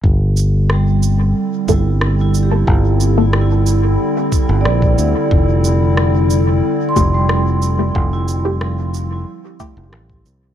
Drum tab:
SH |--x---x---x---x-|--x---x---x---x-|--x---x---x---x-|--x---x---x---x-|
SD |----r-------r---|----r-------r---|----r-------r---|----r-------r---|
BD |o---------o-----|o---------o--o--|o---------o-----|o---------o--o--|